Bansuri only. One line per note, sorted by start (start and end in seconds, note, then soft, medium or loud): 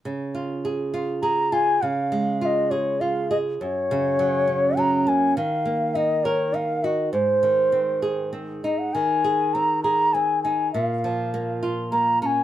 1.23 1.54 A#5 medium
1.53 1.83 G#5 medium
1.82 2.41 F5 medium
2.41 2.46 F5 medium
2.45 2.72 D#5 medium
2.71 3.02 C#5 medium
3.01 3.30 F5 medium
3.31 3.38 D#5 medium
3.61 4.80 C#5 medium
4.78 5.10 A#5 medium
5.08 5.37 G#5 medium
5.37 5.97 F5 medium
5.95 6.26 D#5 medium
6.25 6.56 C#5 medium
6.54 6.85 F5 medium
6.84 7.12 D#5 medium
7.12 8.29 C5 medium
8.64 8.80 D#5 medium
8.79 8.95 F#5 medium
8.94 9.55 G#5 medium
9.54 9.83 A#5 medium
9.83 10.15 A#5 medium
10.13 10.42 G#5 medium
10.43 10.71 G#5 medium
10.73 10.84 E5 medium
10.84 11.58 F5 medium
11.92 12.19 A#5 medium
12.22 12.27 A#5 medium
12.26 12.44 G#5 medium